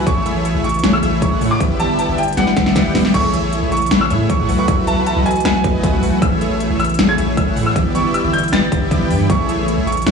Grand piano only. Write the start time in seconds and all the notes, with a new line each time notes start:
0.07 C#6
0.64 C#6
0.93 E6
1.22 C#6
1.51 D6
1.80 A5
1.99 A5
2.18 G5
2.37 F#5
3.14 C#6
3.72 C#6
4.01 E6
4.30 C#6
4.59 C#6
4.87 A5
5.07 A5
5.26 G#5
5.45 G#5
6.22 E6
6.80 E6
7.09 G#6
7.37 E6
7.66 E6
7.95 C#6
8.14 E6
8.33 G6
8.53 A6
9.30 C#6
9.87 C#6